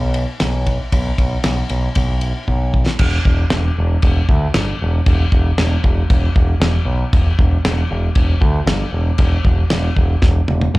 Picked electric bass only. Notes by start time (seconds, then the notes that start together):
Already playing: B1
0.41 B1
0.93 B1
1.19 B1
1.45 B1
1.70 B1
1.96 B1
2.48 B1
3.00 E1
3.26 E1
3.52 E1
3.78 E1
4.03 E1
4.29 D2
4.55 G1
4.82 E1
5.06 E1
5.33 E1
5.58 E1
5.84 E1
6.10 E1
6.36 E1
6.60 E1
6.85 B1
7.13 E1
7.39 E1
7.65 E1
7.91 E1
8.16 E1
8.41 D2
8.66 G1
8.92 E1
9.18 E1
9.45 E1
9.71 E1
9.97 E1
10.22 E1
10.49 E1
10.74 E1